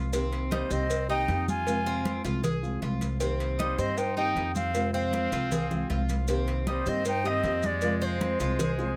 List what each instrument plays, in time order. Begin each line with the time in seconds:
Already playing: upright bass C2, nylon-string guitar F3 G#3 C4 F4, cuban tres F4
0.12 nylon-string guitar C3 D#3 A#3 C4 G4, cuban tres C4, cowbell, high conga, maracas
0.32 cowbell, high conga, maracas
0.51 nylon-string guitar D#3 A#3 C4 G4, trumpet G3, cuban tres D#4, flute C5, cowbell, high conga, maracas
0.70 upright bass C2, nylon-string guitar D#3 A#3 C4 G4, trumpet C4, cuban tres C5, flute D#5, high conga, maracas
0.90 muted nylon-string guitar stroke, cowbell, high conga, maracas
1.09 nylon-string guitar D#3 A#3 C4 G4, trumpet D#4, cuban tres D#4, flute G5, high conga, maracas
1.28 upright bass F2, nylon-string guitar D#3 A#3 C4 G4, cowbell, high conga, maracas
1.48 trumpet F4, flute G#5, high conga, maracas
1.66 nylon-string guitar C3 F3 G#3 C4 F4, cowbell, high conga, maracas
1.86 cuban tres C4, high conga, maracas
2.05 nylon-string guitar F3 G#3, cowbell, high conga, maracas
2.24 upright bass C2, nylon-string guitar F3 G#3 C4 F4, cuban tres F4, cowbell, high conga, maracas
2.44 cuban tres G#4, muted nylon-string guitar stroke, cowbell, high conga, low conga, maracas
2.63 nylon-string guitar F3 G#3 C4 F4, high conga, maracas
2.82 upright bass C2, nylon-string guitar F3 G#3 C4 F4, cuban tres F4, cowbell, high conga, maracas
3.01 cowbell, high conga, maracas
3.20 nylon-string guitar C3 D#3 A#3 C4 G4, cuban tres C4, cowbell, high conga, maracas
3.40 cowbell, high conga, maracas
3.59 nylon-string guitar D#3 A#3 C4 G4, trumpet G3, cuban tres D#4, flute C5, cowbell, high conga, maracas
3.78 upright bass G2, nylon-string guitar D#3 A#3 C4 G4, trumpet C4, cuban tres C5, flute D#5, high conga, maracas
3.97 trumpet D#4, flute G5, muted nylon-string guitar stroke, cowbell, high conga, maracas
4.16 nylon-string guitar D#3 A#3 C4 G4, trumpet D#4, cuban tres D#4, flute G5, high conga, maracas
4.35 upright bass F2, nylon-string guitar D#3 A#3 C4 G4, cowbell, high conga, maracas
4.54 trumpet C4, flute F5, high conga, maracas
4.74 nylon-string guitar C3 F3 G#3 C4 F4, cowbell, high conga, maracas
4.94 trumpet C4, cuban tres C4, flute F5, high conga, maracas
5.13 nylon-string guitar F3 G#3 C4 F4, cowbell, high conga, maracas
5.32 upright bass C2, nylon-string guitar F3 G#3 C4 F4, cuban tres F4, cowbell, high conga, maracas
5.51 cuban tres G#4, muted nylon-string guitar stroke, cowbell, high conga, low conga, maracas
5.71 nylon-string guitar F3 G#3 C4 F4, high conga, low conga, maracas
5.90 upright bass C2, nylon-string guitar F3 G#3 C4 F4, cuban tres F4, cowbell, high conga, maracas
6.09 cowbell, high conga, maracas
6.28 nylon-string guitar C3 D#3 A#3 C4 G4, cuban tres C4, cowbell, high conga, maracas
6.47 cowbell, high conga, maracas
6.67 nylon-string guitar D#3 A#3 C4 G4, trumpet G3, cuban tres D#4, flute C5, cowbell, high conga, maracas
6.86 upright bass G2, nylon-string guitar D#3 A#3 C4 G4, trumpet C4, cuban tres C5, flute D#5, high conga, maracas
7.05 trumpet D#4, flute G5, muted nylon-string guitar stroke, cowbell, high conga, maracas
7.24 nylon-string guitar D#3 A#3 C4 G4, trumpet C4, cuban tres D#4, flute D#5, high conga, maracas
7.43 upright bass F2, nylon-string guitar D#3 A#3 C4 G4, cowbell, high conga, maracas
7.63 trumpet G#3, flute D5, high conga, maracas
7.81 nylon-string guitar C3 F3 G#3 C4 F4, cowbell, high conga, maracas
8.01 trumpet G#3, cuban tres C4, flute C5, high conga, maracas
8.20 nylon-string guitar F3 G#3 C4 F4, cowbell, high conga, maracas
8.40 upright bass C2, nylon-string guitar F3 G#3 C4 F4, cuban tres F4, cowbell, high conga, maracas
8.59 cuban tres G#4, muted nylon-string guitar stroke, cowbell, high bongo, high conga, low conga, maracas
8.78 nylon-string guitar F3 G#3 C4 F4, high bongo, high conga, maracas